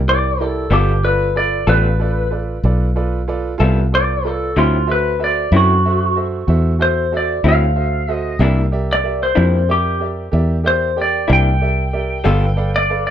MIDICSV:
0, 0, Header, 1, 5, 480
1, 0, Start_track
1, 0, Tempo, 640342
1, 534, Time_signature, 12, 3, 24, 8
1, 9822, End_track
2, 0, Start_track
2, 0, Title_t, "Electric slide guitar"
2, 0, Program_c, 0, 29
2, 68, Note_on_c, 0, 74, 100
2, 311, Note_off_c, 0, 74, 0
2, 311, Note_on_c, 0, 69, 96
2, 536, Note_off_c, 0, 69, 0
2, 549, Note_on_c, 0, 67, 75
2, 775, Note_off_c, 0, 67, 0
2, 783, Note_on_c, 0, 71, 89
2, 1012, Note_off_c, 0, 71, 0
2, 1028, Note_on_c, 0, 74, 98
2, 1255, Note_off_c, 0, 74, 0
2, 1269, Note_on_c, 0, 71, 94
2, 1729, Note_off_c, 0, 71, 0
2, 2960, Note_on_c, 0, 74, 109
2, 3200, Note_off_c, 0, 74, 0
2, 3200, Note_on_c, 0, 69, 75
2, 3423, Note_off_c, 0, 69, 0
2, 3436, Note_on_c, 0, 65, 74
2, 3661, Note_off_c, 0, 65, 0
2, 3684, Note_on_c, 0, 71, 94
2, 3905, Note_off_c, 0, 71, 0
2, 3928, Note_on_c, 0, 74, 95
2, 4147, Note_off_c, 0, 74, 0
2, 4171, Note_on_c, 0, 66, 102
2, 4622, Note_off_c, 0, 66, 0
2, 5115, Note_on_c, 0, 72, 89
2, 5341, Note_off_c, 0, 72, 0
2, 5374, Note_on_c, 0, 74, 90
2, 5591, Note_off_c, 0, 74, 0
2, 5610, Note_on_c, 0, 77, 97
2, 6083, Note_off_c, 0, 77, 0
2, 6083, Note_on_c, 0, 75, 97
2, 6295, Note_off_c, 0, 75, 0
2, 6691, Note_on_c, 0, 74, 99
2, 6909, Note_off_c, 0, 74, 0
2, 6919, Note_on_c, 0, 72, 100
2, 7259, Note_off_c, 0, 72, 0
2, 7281, Note_on_c, 0, 67, 108
2, 7504, Note_off_c, 0, 67, 0
2, 8002, Note_on_c, 0, 72, 94
2, 8224, Note_off_c, 0, 72, 0
2, 8257, Note_on_c, 0, 74, 89
2, 8472, Note_off_c, 0, 74, 0
2, 8491, Note_on_c, 0, 79, 102
2, 9524, Note_off_c, 0, 79, 0
2, 9563, Note_on_c, 0, 74, 91
2, 9783, Note_off_c, 0, 74, 0
2, 9797, Note_on_c, 0, 74, 86
2, 9822, Note_off_c, 0, 74, 0
2, 9822, End_track
3, 0, Start_track
3, 0, Title_t, "Upright piano"
3, 0, Program_c, 1, 0
3, 58, Note_on_c, 1, 70, 48
3, 60, Note_on_c, 1, 64, 50
3, 60, Note_on_c, 1, 67, 46
3, 72, Note_on_c, 1, 74, 55
3, 236, Note_off_c, 1, 70, 0
3, 237, Note_off_c, 1, 64, 0
3, 237, Note_off_c, 1, 67, 0
3, 243, Note_off_c, 1, 74, 0
3, 302, Note_on_c, 1, 64, 60
3, 303, Note_on_c, 1, 67, 46
3, 309, Note_on_c, 1, 70, 50
3, 312, Note_on_c, 1, 74, 64
3, 478, Note_off_c, 1, 64, 0
3, 479, Note_off_c, 1, 67, 0
3, 482, Note_off_c, 1, 70, 0
3, 483, Note_off_c, 1, 74, 0
3, 532, Note_on_c, 1, 71, 59
3, 535, Note_on_c, 1, 65, 58
3, 538, Note_on_c, 1, 69, 62
3, 540, Note_on_c, 1, 74, 72
3, 714, Note_off_c, 1, 71, 0
3, 715, Note_off_c, 1, 65, 0
3, 716, Note_off_c, 1, 69, 0
3, 717, Note_off_c, 1, 74, 0
3, 777, Note_on_c, 1, 65, 59
3, 782, Note_on_c, 1, 69, 54
3, 782, Note_on_c, 1, 74, 72
3, 783, Note_on_c, 1, 71, 62
3, 956, Note_off_c, 1, 65, 0
3, 959, Note_off_c, 1, 69, 0
3, 959, Note_off_c, 1, 71, 0
3, 959, Note_off_c, 1, 74, 0
3, 1013, Note_on_c, 1, 65, 48
3, 1017, Note_on_c, 1, 69, 50
3, 1021, Note_on_c, 1, 74, 60
3, 1022, Note_on_c, 1, 71, 46
3, 1194, Note_off_c, 1, 65, 0
3, 1196, Note_off_c, 1, 69, 0
3, 1199, Note_off_c, 1, 71, 0
3, 1199, Note_off_c, 1, 74, 0
3, 1252, Note_on_c, 1, 65, 57
3, 1255, Note_on_c, 1, 69, 51
3, 1261, Note_on_c, 1, 71, 53
3, 1263, Note_on_c, 1, 74, 59
3, 1434, Note_off_c, 1, 65, 0
3, 1436, Note_off_c, 1, 69, 0
3, 1438, Note_off_c, 1, 71, 0
3, 1440, Note_off_c, 1, 74, 0
3, 1494, Note_on_c, 1, 65, 53
3, 1497, Note_on_c, 1, 69, 55
3, 1505, Note_on_c, 1, 71, 53
3, 1509, Note_on_c, 1, 74, 61
3, 1676, Note_off_c, 1, 65, 0
3, 1677, Note_off_c, 1, 69, 0
3, 1681, Note_off_c, 1, 71, 0
3, 1683, Note_off_c, 1, 74, 0
3, 1730, Note_on_c, 1, 65, 47
3, 1731, Note_on_c, 1, 69, 38
3, 1732, Note_on_c, 1, 71, 41
3, 1741, Note_on_c, 1, 74, 49
3, 1914, Note_off_c, 1, 65, 0
3, 1914, Note_off_c, 1, 69, 0
3, 1915, Note_off_c, 1, 71, 0
3, 1919, Note_off_c, 1, 74, 0
3, 1981, Note_on_c, 1, 65, 53
3, 1981, Note_on_c, 1, 71, 52
3, 1984, Note_on_c, 1, 69, 57
3, 1986, Note_on_c, 1, 74, 64
3, 2159, Note_off_c, 1, 65, 0
3, 2160, Note_off_c, 1, 71, 0
3, 2161, Note_off_c, 1, 69, 0
3, 2162, Note_off_c, 1, 74, 0
3, 2215, Note_on_c, 1, 69, 58
3, 2217, Note_on_c, 1, 65, 60
3, 2221, Note_on_c, 1, 71, 58
3, 2223, Note_on_c, 1, 74, 60
3, 2397, Note_off_c, 1, 69, 0
3, 2398, Note_off_c, 1, 65, 0
3, 2399, Note_off_c, 1, 71, 0
3, 2401, Note_off_c, 1, 74, 0
3, 2457, Note_on_c, 1, 65, 66
3, 2460, Note_on_c, 1, 71, 56
3, 2461, Note_on_c, 1, 69, 58
3, 2467, Note_on_c, 1, 74, 69
3, 2638, Note_off_c, 1, 65, 0
3, 2639, Note_off_c, 1, 71, 0
3, 2640, Note_off_c, 1, 69, 0
3, 2642, Note_off_c, 1, 74, 0
3, 2683, Note_on_c, 1, 65, 75
3, 2686, Note_on_c, 1, 69, 66
3, 2695, Note_on_c, 1, 71, 63
3, 2696, Note_on_c, 1, 76, 74
3, 2871, Note_off_c, 1, 65, 0
3, 2873, Note_off_c, 1, 69, 0
3, 2877, Note_off_c, 1, 71, 0
3, 2877, Note_off_c, 1, 76, 0
3, 2941, Note_on_c, 1, 69, 49
3, 2943, Note_on_c, 1, 65, 46
3, 2950, Note_on_c, 1, 71, 45
3, 2950, Note_on_c, 1, 74, 52
3, 3120, Note_off_c, 1, 69, 0
3, 3121, Note_off_c, 1, 65, 0
3, 3124, Note_off_c, 1, 74, 0
3, 3125, Note_off_c, 1, 71, 0
3, 3183, Note_on_c, 1, 69, 49
3, 3184, Note_on_c, 1, 65, 54
3, 3187, Note_on_c, 1, 71, 50
3, 3195, Note_on_c, 1, 74, 59
3, 3361, Note_off_c, 1, 69, 0
3, 3362, Note_off_c, 1, 65, 0
3, 3363, Note_off_c, 1, 71, 0
3, 3367, Note_off_c, 1, 74, 0
3, 3422, Note_on_c, 1, 66, 64
3, 3422, Note_on_c, 1, 69, 56
3, 3426, Note_on_c, 1, 72, 57
3, 3426, Note_on_c, 1, 76, 70
3, 3601, Note_off_c, 1, 66, 0
3, 3601, Note_off_c, 1, 69, 0
3, 3603, Note_off_c, 1, 72, 0
3, 3603, Note_off_c, 1, 76, 0
3, 3650, Note_on_c, 1, 69, 54
3, 3652, Note_on_c, 1, 66, 61
3, 3656, Note_on_c, 1, 72, 55
3, 3656, Note_on_c, 1, 76, 66
3, 3835, Note_off_c, 1, 69, 0
3, 3836, Note_off_c, 1, 66, 0
3, 3838, Note_off_c, 1, 72, 0
3, 3838, Note_off_c, 1, 76, 0
3, 3890, Note_on_c, 1, 66, 51
3, 3892, Note_on_c, 1, 69, 46
3, 3895, Note_on_c, 1, 72, 48
3, 3898, Note_on_c, 1, 76, 61
3, 4075, Note_off_c, 1, 66, 0
3, 4076, Note_off_c, 1, 69, 0
3, 4078, Note_off_c, 1, 72, 0
3, 4079, Note_off_c, 1, 76, 0
3, 4147, Note_on_c, 1, 66, 55
3, 4152, Note_on_c, 1, 69, 47
3, 4154, Note_on_c, 1, 72, 54
3, 4155, Note_on_c, 1, 76, 68
3, 4324, Note_off_c, 1, 66, 0
3, 4326, Note_off_c, 1, 69, 0
3, 4328, Note_off_c, 1, 72, 0
3, 4328, Note_off_c, 1, 76, 0
3, 4387, Note_on_c, 1, 66, 55
3, 4387, Note_on_c, 1, 69, 51
3, 4390, Note_on_c, 1, 76, 60
3, 4391, Note_on_c, 1, 72, 51
3, 4564, Note_off_c, 1, 66, 0
3, 4564, Note_off_c, 1, 69, 0
3, 4565, Note_off_c, 1, 76, 0
3, 4566, Note_off_c, 1, 72, 0
3, 4617, Note_on_c, 1, 72, 48
3, 4618, Note_on_c, 1, 66, 47
3, 4622, Note_on_c, 1, 69, 44
3, 4625, Note_on_c, 1, 76, 50
3, 4799, Note_off_c, 1, 66, 0
3, 4799, Note_off_c, 1, 72, 0
3, 4801, Note_off_c, 1, 69, 0
3, 4803, Note_off_c, 1, 76, 0
3, 4853, Note_on_c, 1, 66, 60
3, 4859, Note_on_c, 1, 72, 55
3, 4862, Note_on_c, 1, 69, 57
3, 4865, Note_on_c, 1, 76, 72
3, 5037, Note_off_c, 1, 66, 0
3, 5040, Note_off_c, 1, 72, 0
3, 5041, Note_off_c, 1, 69, 0
3, 5043, Note_off_c, 1, 76, 0
3, 5089, Note_on_c, 1, 66, 54
3, 5094, Note_on_c, 1, 69, 54
3, 5098, Note_on_c, 1, 72, 49
3, 5101, Note_on_c, 1, 76, 63
3, 5275, Note_off_c, 1, 66, 0
3, 5278, Note_off_c, 1, 69, 0
3, 5280, Note_off_c, 1, 72, 0
3, 5281, Note_off_c, 1, 76, 0
3, 5337, Note_on_c, 1, 66, 53
3, 5341, Note_on_c, 1, 69, 50
3, 5341, Note_on_c, 1, 72, 48
3, 5348, Note_on_c, 1, 76, 54
3, 5519, Note_off_c, 1, 66, 0
3, 5521, Note_off_c, 1, 69, 0
3, 5521, Note_off_c, 1, 72, 0
3, 5525, Note_off_c, 1, 76, 0
3, 5579, Note_on_c, 1, 66, 55
3, 5581, Note_on_c, 1, 69, 58
3, 5582, Note_on_c, 1, 76, 69
3, 5583, Note_on_c, 1, 72, 61
3, 5760, Note_off_c, 1, 66, 0
3, 5761, Note_off_c, 1, 69, 0
3, 5762, Note_off_c, 1, 76, 0
3, 5763, Note_off_c, 1, 72, 0
3, 5813, Note_on_c, 1, 69, 43
3, 5817, Note_on_c, 1, 76, 54
3, 5818, Note_on_c, 1, 66, 49
3, 5819, Note_on_c, 1, 72, 44
3, 5997, Note_off_c, 1, 69, 0
3, 5999, Note_off_c, 1, 76, 0
3, 6000, Note_off_c, 1, 66, 0
3, 6000, Note_off_c, 1, 72, 0
3, 6060, Note_on_c, 1, 69, 54
3, 6061, Note_on_c, 1, 66, 62
3, 6069, Note_on_c, 1, 76, 60
3, 6070, Note_on_c, 1, 72, 51
3, 6241, Note_off_c, 1, 66, 0
3, 6241, Note_off_c, 1, 69, 0
3, 6245, Note_off_c, 1, 76, 0
3, 6246, Note_off_c, 1, 72, 0
3, 6290, Note_on_c, 1, 67, 78
3, 6298, Note_on_c, 1, 70, 68
3, 6298, Note_on_c, 1, 74, 62
3, 6299, Note_on_c, 1, 76, 93
3, 6476, Note_off_c, 1, 67, 0
3, 6480, Note_off_c, 1, 70, 0
3, 6480, Note_off_c, 1, 74, 0
3, 6480, Note_off_c, 1, 76, 0
3, 6534, Note_on_c, 1, 67, 63
3, 6539, Note_on_c, 1, 74, 57
3, 6542, Note_on_c, 1, 70, 56
3, 6545, Note_on_c, 1, 76, 68
3, 6718, Note_off_c, 1, 67, 0
3, 6720, Note_off_c, 1, 74, 0
3, 6722, Note_off_c, 1, 70, 0
3, 6723, Note_off_c, 1, 76, 0
3, 6773, Note_on_c, 1, 67, 49
3, 6773, Note_on_c, 1, 70, 50
3, 6777, Note_on_c, 1, 74, 47
3, 6782, Note_on_c, 1, 76, 60
3, 6957, Note_off_c, 1, 67, 0
3, 6957, Note_off_c, 1, 70, 0
3, 6959, Note_off_c, 1, 74, 0
3, 6962, Note_off_c, 1, 76, 0
3, 7013, Note_on_c, 1, 67, 56
3, 7020, Note_on_c, 1, 70, 48
3, 7023, Note_on_c, 1, 74, 51
3, 7026, Note_on_c, 1, 76, 59
3, 7197, Note_off_c, 1, 67, 0
3, 7201, Note_off_c, 1, 70, 0
3, 7202, Note_off_c, 1, 74, 0
3, 7204, Note_off_c, 1, 76, 0
3, 7261, Note_on_c, 1, 70, 57
3, 7262, Note_on_c, 1, 67, 56
3, 7265, Note_on_c, 1, 74, 54
3, 7268, Note_on_c, 1, 76, 66
3, 7441, Note_off_c, 1, 67, 0
3, 7441, Note_off_c, 1, 70, 0
3, 7443, Note_off_c, 1, 74, 0
3, 7444, Note_off_c, 1, 76, 0
3, 7490, Note_on_c, 1, 67, 50
3, 7494, Note_on_c, 1, 70, 46
3, 7500, Note_on_c, 1, 74, 43
3, 7502, Note_on_c, 1, 76, 49
3, 7676, Note_off_c, 1, 67, 0
3, 7678, Note_off_c, 1, 70, 0
3, 7681, Note_off_c, 1, 74, 0
3, 7682, Note_off_c, 1, 76, 0
3, 7733, Note_on_c, 1, 67, 62
3, 7735, Note_on_c, 1, 70, 57
3, 7745, Note_on_c, 1, 74, 60
3, 7746, Note_on_c, 1, 76, 67
3, 7917, Note_off_c, 1, 67, 0
3, 7918, Note_off_c, 1, 70, 0
3, 7923, Note_off_c, 1, 74, 0
3, 7923, Note_off_c, 1, 76, 0
3, 7972, Note_on_c, 1, 67, 57
3, 7975, Note_on_c, 1, 70, 54
3, 7980, Note_on_c, 1, 74, 52
3, 7982, Note_on_c, 1, 76, 61
3, 8156, Note_off_c, 1, 67, 0
3, 8158, Note_off_c, 1, 70, 0
3, 8160, Note_off_c, 1, 74, 0
3, 8161, Note_off_c, 1, 76, 0
3, 8218, Note_on_c, 1, 67, 62
3, 8219, Note_on_c, 1, 70, 51
3, 8224, Note_on_c, 1, 74, 54
3, 8228, Note_on_c, 1, 79, 61
3, 8399, Note_off_c, 1, 67, 0
3, 8399, Note_off_c, 1, 70, 0
3, 8402, Note_off_c, 1, 74, 0
3, 8404, Note_off_c, 1, 79, 0
3, 8451, Note_on_c, 1, 67, 59
3, 8455, Note_on_c, 1, 70, 60
3, 8461, Note_on_c, 1, 74, 63
3, 8462, Note_on_c, 1, 76, 68
3, 8635, Note_off_c, 1, 67, 0
3, 8637, Note_off_c, 1, 70, 0
3, 8640, Note_off_c, 1, 74, 0
3, 8641, Note_off_c, 1, 76, 0
3, 8703, Note_on_c, 1, 67, 53
3, 8706, Note_on_c, 1, 74, 47
3, 8707, Note_on_c, 1, 70, 52
3, 8711, Note_on_c, 1, 76, 56
3, 8881, Note_off_c, 1, 67, 0
3, 8883, Note_off_c, 1, 70, 0
3, 8883, Note_off_c, 1, 74, 0
3, 8885, Note_off_c, 1, 76, 0
3, 8944, Note_on_c, 1, 67, 57
3, 8945, Note_on_c, 1, 70, 52
3, 8945, Note_on_c, 1, 74, 52
3, 8948, Note_on_c, 1, 76, 57
3, 9121, Note_off_c, 1, 67, 0
3, 9122, Note_off_c, 1, 70, 0
3, 9122, Note_off_c, 1, 74, 0
3, 9124, Note_off_c, 1, 76, 0
3, 9175, Note_on_c, 1, 69, 80
3, 9180, Note_on_c, 1, 71, 75
3, 9183, Note_on_c, 1, 77, 92
3, 9187, Note_on_c, 1, 74, 73
3, 9357, Note_off_c, 1, 69, 0
3, 9359, Note_off_c, 1, 71, 0
3, 9361, Note_off_c, 1, 77, 0
3, 9363, Note_off_c, 1, 74, 0
3, 9416, Note_on_c, 1, 69, 67
3, 9422, Note_on_c, 1, 71, 58
3, 9423, Note_on_c, 1, 74, 64
3, 9431, Note_on_c, 1, 77, 66
3, 9597, Note_off_c, 1, 69, 0
3, 9600, Note_off_c, 1, 71, 0
3, 9600, Note_off_c, 1, 74, 0
3, 9604, Note_off_c, 1, 77, 0
3, 9668, Note_on_c, 1, 69, 51
3, 9676, Note_on_c, 1, 71, 52
3, 9677, Note_on_c, 1, 77, 59
3, 9678, Note_on_c, 1, 74, 51
3, 9822, Note_off_c, 1, 69, 0
3, 9822, Note_off_c, 1, 71, 0
3, 9822, Note_off_c, 1, 74, 0
3, 9822, Note_off_c, 1, 77, 0
3, 9822, End_track
4, 0, Start_track
4, 0, Title_t, "Clean electric guitar"
4, 0, Program_c, 2, 27
4, 529, Note_on_c, 2, 55, 72
4, 536, Note_on_c, 2, 59, 90
4, 544, Note_on_c, 2, 65, 86
4, 545, Note_on_c, 2, 69, 89
4, 676, Note_off_c, 2, 55, 0
4, 680, Note_off_c, 2, 59, 0
4, 683, Note_off_c, 2, 65, 0
4, 684, Note_off_c, 2, 69, 0
4, 1253, Note_on_c, 2, 69, 62
4, 1261, Note_on_c, 2, 65, 59
4, 1266, Note_on_c, 2, 59, 58
4, 1272, Note_on_c, 2, 55, 56
4, 1398, Note_off_c, 2, 69, 0
4, 1402, Note_off_c, 2, 65, 0
4, 1405, Note_off_c, 2, 59, 0
4, 1408, Note_off_c, 2, 55, 0
4, 2700, Note_on_c, 2, 69, 71
4, 2708, Note_on_c, 2, 65, 68
4, 2712, Note_on_c, 2, 59, 65
4, 2719, Note_on_c, 2, 55, 60
4, 2843, Note_off_c, 2, 69, 0
4, 2847, Note_off_c, 2, 65, 0
4, 2850, Note_off_c, 2, 59, 0
4, 2853, Note_off_c, 2, 55, 0
4, 3422, Note_on_c, 2, 50, 78
4, 3429, Note_on_c, 2, 54, 76
4, 3432, Note_on_c, 2, 60, 80
4, 3437, Note_on_c, 2, 64, 90
4, 3565, Note_off_c, 2, 50, 0
4, 3568, Note_off_c, 2, 54, 0
4, 3570, Note_off_c, 2, 60, 0
4, 3572, Note_off_c, 2, 64, 0
4, 4141, Note_on_c, 2, 64, 63
4, 4152, Note_on_c, 2, 60, 62
4, 4156, Note_on_c, 2, 54, 64
4, 4161, Note_on_c, 2, 50, 51
4, 4285, Note_off_c, 2, 64, 0
4, 4290, Note_off_c, 2, 60, 0
4, 4292, Note_off_c, 2, 54, 0
4, 4295, Note_off_c, 2, 50, 0
4, 5578, Note_on_c, 2, 64, 70
4, 5587, Note_on_c, 2, 60, 65
4, 5593, Note_on_c, 2, 50, 56
4, 5594, Note_on_c, 2, 54, 58
4, 5724, Note_off_c, 2, 64, 0
4, 5728, Note_off_c, 2, 60, 0
4, 5731, Note_off_c, 2, 50, 0
4, 5732, Note_off_c, 2, 54, 0
4, 6300, Note_on_c, 2, 48, 91
4, 6305, Note_on_c, 2, 58, 94
4, 6308, Note_on_c, 2, 62, 95
4, 6314, Note_on_c, 2, 64, 92
4, 6445, Note_off_c, 2, 48, 0
4, 6447, Note_off_c, 2, 58, 0
4, 6449, Note_off_c, 2, 62, 0
4, 6452, Note_off_c, 2, 64, 0
4, 7011, Note_on_c, 2, 64, 66
4, 7013, Note_on_c, 2, 62, 65
4, 7019, Note_on_c, 2, 58, 64
4, 7023, Note_on_c, 2, 48, 48
4, 7160, Note_off_c, 2, 64, 0
4, 7161, Note_off_c, 2, 62, 0
4, 7164, Note_off_c, 2, 58, 0
4, 7166, Note_off_c, 2, 48, 0
4, 8454, Note_on_c, 2, 64, 65
4, 8466, Note_on_c, 2, 62, 71
4, 8470, Note_on_c, 2, 58, 65
4, 8475, Note_on_c, 2, 48, 58
4, 8601, Note_off_c, 2, 64, 0
4, 8607, Note_off_c, 2, 62, 0
4, 8609, Note_off_c, 2, 58, 0
4, 8611, Note_off_c, 2, 48, 0
4, 9177, Note_on_c, 2, 55, 91
4, 9183, Note_on_c, 2, 59, 96
4, 9193, Note_on_c, 2, 65, 93
4, 9193, Note_on_c, 2, 69, 92
4, 9322, Note_off_c, 2, 55, 0
4, 9325, Note_off_c, 2, 59, 0
4, 9330, Note_off_c, 2, 65, 0
4, 9330, Note_off_c, 2, 69, 0
4, 9822, End_track
5, 0, Start_track
5, 0, Title_t, "Fingered electric bass"
5, 0, Program_c, 3, 33
5, 0, Note_on_c, 3, 36, 99
5, 513, Note_off_c, 3, 36, 0
5, 527, Note_on_c, 3, 31, 89
5, 1230, Note_off_c, 3, 31, 0
5, 1254, Note_on_c, 3, 33, 92
5, 1954, Note_off_c, 3, 33, 0
5, 1976, Note_on_c, 3, 35, 83
5, 2676, Note_off_c, 3, 35, 0
5, 2699, Note_on_c, 3, 36, 99
5, 3398, Note_off_c, 3, 36, 0
5, 3422, Note_on_c, 3, 38, 76
5, 4120, Note_off_c, 3, 38, 0
5, 4136, Note_on_c, 3, 42, 95
5, 4837, Note_off_c, 3, 42, 0
5, 4857, Note_on_c, 3, 40, 80
5, 5558, Note_off_c, 3, 40, 0
5, 5577, Note_on_c, 3, 38, 85
5, 6278, Note_off_c, 3, 38, 0
5, 6290, Note_on_c, 3, 36, 89
5, 6994, Note_off_c, 3, 36, 0
5, 7025, Note_on_c, 3, 41, 97
5, 7721, Note_off_c, 3, 41, 0
5, 7742, Note_on_c, 3, 40, 83
5, 8439, Note_off_c, 3, 40, 0
5, 8467, Note_on_c, 3, 36, 98
5, 9161, Note_off_c, 3, 36, 0
5, 9186, Note_on_c, 3, 31, 92
5, 9822, Note_off_c, 3, 31, 0
5, 9822, End_track
0, 0, End_of_file